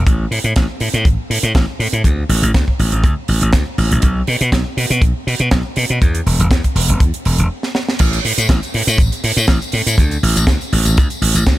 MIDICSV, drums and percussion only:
0, 0, Header, 1, 2, 480
1, 0, Start_track
1, 0, Tempo, 495868
1, 59, Time_signature, 4, 2, 24, 8
1, 11213, End_track
2, 0, Start_track
2, 0, Title_t, "Drums"
2, 64, Note_on_c, 9, 36, 116
2, 67, Note_on_c, 9, 42, 88
2, 161, Note_off_c, 9, 36, 0
2, 164, Note_off_c, 9, 42, 0
2, 308, Note_on_c, 9, 46, 101
2, 405, Note_off_c, 9, 46, 0
2, 429, Note_on_c, 9, 42, 62
2, 526, Note_off_c, 9, 42, 0
2, 541, Note_on_c, 9, 42, 81
2, 544, Note_on_c, 9, 38, 114
2, 545, Note_on_c, 9, 36, 116
2, 637, Note_off_c, 9, 42, 0
2, 641, Note_off_c, 9, 38, 0
2, 642, Note_off_c, 9, 36, 0
2, 777, Note_on_c, 9, 46, 100
2, 874, Note_off_c, 9, 46, 0
2, 913, Note_on_c, 9, 42, 62
2, 1010, Note_off_c, 9, 42, 0
2, 1018, Note_on_c, 9, 36, 120
2, 1026, Note_on_c, 9, 42, 73
2, 1115, Note_off_c, 9, 36, 0
2, 1122, Note_off_c, 9, 42, 0
2, 1267, Note_on_c, 9, 46, 109
2, 1364, Note_off_c, 9, 46, 0
2, 1386, Note_on_c, 9, 42, 59
2, 1483, Note_off_c, 9, 42, 0
2, 1499, Note_on_c, 9, 42, 77
2, 1500, Note_on_c, 9, 36, 120
2, 1507, Note_on_c, 9, 38, 108
2, 1596, Note_off_c, 9, 42, 0
2, 1597, Note_off_c, 9, 36, 0
2, 1603, Note_off_c, 9, 38, 0
2, 1744, Note_on_c, 9, 46, 91
2, 1841, Note_off_c, 9, 46, 0
2, 1875, Note_on_c, 9, 42, 59
2, 1971, Note_off_c, 9, 42, 0
2, 1977, Note_on_c, 9, 36, 101
2, 1982, Note_on_c, 9, 42, 91
2, 2074, Note_off_c, 9, 36, 0
2, 2079, Note_off_c, 9, 42, 0
2, 2222, Note_on_c, 9, 46, 111
2, 2319, Note_off_c, 9, 46, 0
2, 2356, Note_on_c, 9, 42, 61
2, 2452, Note_off_c, 9, 42, 0
2, 2463, Note_on_c, 9, 36, 116
2, 2463, Note_on_c, 9, 42, 78
2, 2466, Note_on_c, 9, 38, 100
2, 2560, Note_off_c, 9, 36, 0
2, 2560, Note_off_c, 9, 42, 0
2, 2563, Note_off_c, 9, 38, 0
2, 2592, Note_on_c, 9, 36, 58
2, 2689, Note_off_c, 9, 36, 0
2, 2706, Note_on_c, 9, 46, 88
2, 2803, Note_off_c, 9, 46, 0
2, 2826, Note_on_c, 9, 42, 66
2, 2923, Note_off_c, 9, 42, 0
2, 2939, Note_on_c, 9, 36, 119
2, 2946, Note_on_c, 9, 42, 89
2, 3036, Note_off_c, 9, 36, 0
2, 3043, Note_off_c, 9, 42, 0
2, 3177, Note_on_c, 9, 46, 98
2, 3274, Note_off_c, 9, 46, 0
2, 3303, Note_on_c, 9, 42, 67
2, 3400, Note_off_c, 9, 42, 0
2, 3413, Note_on_c, 9, 38, 120
2, 3420, Note_on_c, 9, 36, 117
2, 3421, Note_on_c, 9, 42, 87
2, 3510, Note_off_c, 9, 38, 0
2, 3517, Note_off_c, 9, 36, 0
2, 3518, Note_off_c, 9, 42, 0
2, 3661, Note_on_c, 9, 46, 94
2, 3758, Note_off_c, 9, 46, 0
2, 3788, Note_on_c, 9, 42, 61
2, 3885, Note_off_c, 9, 42, 0
2, 3892, Note_on_c, 9, 42, 94
2, 3901, Note_on_c, 9, 36, 103
2, 3989, Note_off_c, 9, 42, 0
2, 3998, Note_off_c, 9, 36, 0
2, 4137, Note_on_c, 9, 46, 105
2, 4234, Note_off_c, 9, 46, 0
2, 4267, Note_on_c, 9, 42, 66
2, 4364, Note_off_c, 9, 42, 0
2, 4378, Note_on_c, 9, 36, 100
2, 4381, Note_on_c, 9, 38, 114
2, 4382, Note_on_c, 9, 42, 83
2, 4474, Note_off_c, 9, 36, 0
2, 4478, Note_off_c, 9, 38, 0
2, 4479, Note_off_c, 9, 42, 0
2, 4624, Note_on_c, 9, 46, 105
2, 4721, Note_off_c, 9, 46, 0
2, 4749, Note_on_c, 9, 42, 66
2, 4846, Note_off_c, 9, 42, 0
2, 4856, Note_on_c, 9, 36, 101
2, 4859, Note_on_c, 9, 42, 85
2, 4952, Note_off_c, 9, 36, 0
2, 4956, Note_off_c, 9, 42, 0
2, 5108, Note_on_c, 9, 46, 98
2, 5205, Note_off_c, 9, 46, 0
2, 5220, Note_on_c, 9, 42, 63
2, 5317, Note_off_c, 9, 42, 0
2, 5337, Note_on_c, 9, 38, 122
2, 5338, Note_on_c, 9, 42, 84
2, 5339, Note_on_c, 9, 36, 113
2, 5433, Note_off_c, 9, 38, 0
2, 5435, Note_off_c, 9, 42, 0
2, 5436, Note_off_c, 9, 36, 0
2, 5575, Note_on_c, 9, 46, 99
2, 5672, Note_off_c, 9, 46, 0
2, 5704, Note_on_c, 9, 42, 63
2, 5801, Note_off_c, 9, 42, 0
2, 5824, Note_on_c, 9, 36, 108
2, 5825, Note_on_c, 9, 42, 85
2, 5921, Note_off_c, 9, 36, 0
2, 5922, Note_off_c, 9, 42, 0
2, 5949, Note_on_c, 9, 42, 60
2, 6046, Note_off_c, 9, 42, 0
2, 6066, Note_on_c, 9, 46, 99
2, 6163, Note_off_c, 9, 46, 0
2, 6194, Note_on_c, 9, 42, 64
2, 6291, Note_off_c, 9, 42, 0
2, 6298, Note_on_c, 9, 36, 110
2, 6305, Note_on_c, 9, 38, 114
2, 6306, Note_on_c, 9, 42, 85
2, 6395, Note_off_c, 9, 36, 0
2, 6402, Note_off_c, 9, 38, 0
2, 6403, Note_off_c, 9, 42, 0
2, 6430, Note_on_c, 9, 42, 50
2, 6431, Note_on_c, 9, 36, 55
2, 6527, Note_off_c, 9, 42, 0
2, 6528, Note_off_c, 9, 36, 0
2, 6543, Note_on_c, 9, 46, 112
2, 6639, Note_off_c, 9, 46, 0
2, 6671, Note_on_c, 9, 42, 65
2, 6768, Note_off_c, 9, 42, 0
2, 6779, Note_on_c, 9, 36, 110
2, 6780, Note_on_c, 9, 42, 85
2, 6876, Note_off_c, 9, 36, 0
2, 6877, Note_off_c, 9, 42, 0
2, 6909, Note_on_c, 9, 42, 54
2, 7006, Note_off_c, 9, 42, 0
2, 7022, Note_on_c, 9, 46, 99
2, 7118, Note_off_c, 9, 46, 0
2, 7149, Note_on_c, 9, 42, 61
2, 7245, Note_off_c, 9, 42, 0
2, 7388, Note_on_c, 9, 38, 49
2, 7485, Note_off_c, 9, 38, 0
2, 7500, Note_on_c, 9, 38, 77
2, 7597, Note_off_c, 9, 38, 0
2, 7633, Note_on_c, 9, 38, 73
2, 7730, Note_off_c, 9, 38, 0
2, 7735, Note_on_c, 9, 42, 75
2, 7735, Note_on_c, 9, 49, 101
2, 7743, Note_on_c, 9, 54, 60
2, 7744, Note_on_c, 9, 36, 110
2, 7832, Note_off_c, 9, 42, 0
2, 7832, Note_off_c, 9, 49, 0
2, 7839, Note_off_c, 9, 54, 0
2, 7841, Note_off_c, 9, 36, 0
2, 7869, Note_on_c, 9, 54, 34
2, 7870, Note_on_c, 9, 42, 47
2, 7965, Note_off_c, 9, 54, 0
2, 7967, Note_off_c, 9, 42, 0
2, 7983, Note_on_c, 9, 46, 103
2, 8079, Note_off_c, 9, 46, 0
2, 8111, Note_on_c, 9, 42, 67
2, 8114, Note_on_c, 9, 54, 61
2, 8208, Note_off_c, 9, 42, 0
2, 8210, Note_off_c, 9, 54, 0
2, 8219, Note_on_c, 9, 36, 119
2, 8219, Note_on_c, 9, 42, 69
2, 8224, Note_on_c, 9, 38, 127
2, 8315, Note_off_c, 9, 36, 0
2, 8316, Note_off_c, 9, 42, 0
2, 8321, Note_off_c, 9, 38, 0
2, 8352, Note_on_c, 9, 42, 47
2, 8357, Note_on_c, 9, 54, 31
2, 8449, Note_off_c, 9, 42, 0
2, 8453, Note_off_c, 9, 54, 0
2, 8461, Note_on_c, 9, 46, 117
2, 8557, Note_off_c, 9, 46, 0
2, 8591, Note_on_c, 9, 42, 69
2, 8595, Note_on_c, 9, 54, 73
2, 8688, Note_off_c, 9, 42, 0
2, 8692, Note_off_c, 9, 54, 0
2, 8695, Note_on_c, 9, 36, 124
2, 8701, Note_on_c, 9, 42, 64
2, 8703, Note_on_c, 9, 54, 55
2, 8792, Note_off_c, 9, 36, 0
2, 8798, Note_off_c, 9, 42, 0
2, 8800, Note_off_c, 9, 54, 0
2, 8830, Note_on_c, 9, 42, 47
2, 8833, Note_on_c, 9, 54, 33
2, 8927, Note_off_c, 9, 42, 0
2, 8930, Note_off_c, 9, 54, 0
2, 8941, Note_on_c, 9, 46, 110
2, 9038, Note_off_c, 9, 46, 0
2, 9063, Note_on_c, 9, 42, 65
2, 9077, Note_on_c, 9, 54, 73
2, 9159, Note_off_c, 9, 42, 0
2, 9174, Note_off_c, 9, 54, 0
2, 9175, Note_on_c, 9, 38, 121
2, 9177, Note_on_c, 9, 36, 116
2, 9182, Note_on_c, 9, 42, 76
2, 9271, Note_off_c, 9, 38, 0
2, 9274, Note_off_c, 9, 36, 0
2, 9279, Note_off_c, 9, 42, 0
2, 9308, Note_on_c, 9, 54, 31
2, 9314, Note_on_c, 9, 42, 41
2, 9404, Note_off_c, 9, 54, 0
2, 9409, Note_on_c, 9, 46, 101
2, 9411, Note_off_c, 9, 42, 0
2, 9506, Note_off_c, 9, 46, 0
2, 9551, Note_on_c, 9, 42, 68
2, 9554, Note_on_c, 9, 54, 68
2, 9647, Note_off_c, 9, 42, 0
2, 9650, Note_off_c, 9, 54, 0
2, 9659, Note_on_c, 9, 36, 115
2, 9666, Note_on_c, 9, 42, 68
2, 9756, Note_off_c, 9, 36, 0
2, 9763, Note_off_c, 9, 42, 0
2, 9789, Note_on_c, 9, 42, 47
2, 9797, Note_on_c, 9, 54, 33
2, 9886, Note_off_c, 9, 42, 0
2, 9894, Note_off_c, 9, 54, 0
2, 9906, Note_on_c, 9, 46, 118
2, 10003, Note_off_c, 9, 46, 0
2, 10034, Note_on_c, 9, 42, 65
2, 10037, Note_on_c, 9, 54, 65
2, 10130, Note_off_c, 9, 42, 0
2, 10134, Note_off_c, 9, 54, 0
2, 10134, Note_on_c, 9, 36, 121
2, 10136, Note_on_c, 9, 38, 118
2, 10139, Note_on_c, 9, 42, 67
2, 10146, Note_on_c, 9, 54, 50
2, 10231, Note_off_c, 9, 36, 0
2, 10233, Note_off_c, 9, 38, 0
2, 10236, Note_off_c, 9, 42, 0
2, 10243, Note_off_c, 9, 54, 0
2, 10270, Note_on_c, 9, 54, 30
2, 10278, Note_on_c, 9, 42, 41
2, 10366, Note_off_c, 9, 54, 0
2, 10374, Note_off_c, 9, 42, 0
2, 10384, Note_on_c, 9, 46, 108
2, 10480, Note_off_c, 9, 46, 0
2, 10506, Note_on_c, 9, 42, 65
2, 10509, Note_on_c, 9, 54, 65
2, 10603, Note_off_c, 9, 42, 0
2, 10605, Note_off_c, 9, 54, 0
2, 10621, Note_on_c, 9, 54, 53
2, 10625, Note_on_c, 9, 42, 65
2, 10628, Note_on_c, 9, 36, 123
2, 10718, Note_off_c, 9, 54, 0
2, 10722, Note_off_c, 9, 42, 0
2, 10724, Note_off_c, 9, 36, 0
2, 10748, Note_on_c, 9, 42, 46
2, 10755, Note_on_c, 9, 54, 29
2, 10844, Note_off_c, 9, 42, 0
2, 10852, Note_off_c, 9, 54, 0
2, 10862, Note_on_c, 9, 46, 114
2, 10958, Note_off_c, 9, 46, 0
2, 10987, Note_on_c, 9, 54, 59
2, 10989, Note_on_c, 9, 42, 61
2, 11084, Note_off_c, 9, 54, 0
2, 11086, Note_off_c, 9, 42, 0
2, 11099, Note_on_c, 9, 36, 126
2, 11099, Note_on_c, 9, 42, 66
2, 11101, Note_on_c, 9, 38, 116
2, 11195, Note_off_c, 9, 42, 0
2, 11196, Note_off_c, 9, 36, 0
2, 11197, Note_off_c, 9, 38, 0
2, 11213, End_track
0, 0, End_of_file